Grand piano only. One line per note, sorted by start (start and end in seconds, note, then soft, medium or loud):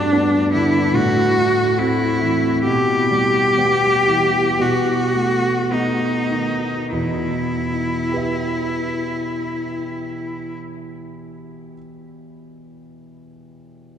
0.00 0.90 G2 medium
0.00 0.36 G3 soft
0.12 0.49 B3 soft
0.12 0.49 D4 medium
0.54 0.95 D3 soft
0.93 2.61 A2 medium
1.35 1.76 A3 soft
1.78 2.17 A3 soft
1.78 2.17 C4 soft
2.21 2.65 E3 soft
2.67 4.57 B2 medium
3.11 3.56 G3 soft
3.57 4.04 G3 soft
3.57 4.05 B3 soft
4.08 4.60 E3 soft
4.59 6.88 B2 medium
5.13 5.69 A3 soft
5.71 6.28 A3 soft
5.71 6.28 B3 soft
6.31 6.93 D#3 soft
6.92 10.53 E2 soft
6.92 10.53 B2 soft
8.12 11.73 G4 soft
8.12 11.74 B4 soft
8.16 11.77 E5 soft